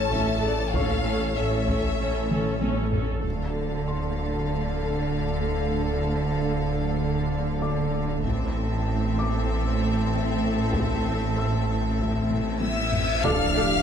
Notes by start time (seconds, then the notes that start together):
Already playing: A1 C#5 A5
0.11 A1 A2 C#4 A4 E5, taiko
0.42 C#3 A4 D5
0.72 A1 A2 C#4 A4 C#5 F5 C#6, taiko
1.05 C#4 A4
1.36 A1 A2 C#4 A4 E5
1.67 C#4 A4, taiko
1.99 A1 A2 C#4 A4
2.30 C#4 A4, taiko mid
2.61 A1 A2 C#4 A4, taiko high
2.92 C#4 A4, taiko low
3.23 D1 D2 D3 A3 A4 F5, taiko
3.88 C6
7.62 D5 D6
8.24 A1 A2 C4 A4 E5, taiko
9.19 D6
10.74 taiko, reverse cymbal
11.38 E6
11.99 taiko
12.30 taiko low-mid
12.61 E5 E6, taiko high
12.93 taiko low
13.23 D1 D2 A2 F3 D4 A4 D5 F5 D6 F6, taiko, impact
13.55 D2 D4 G4 A4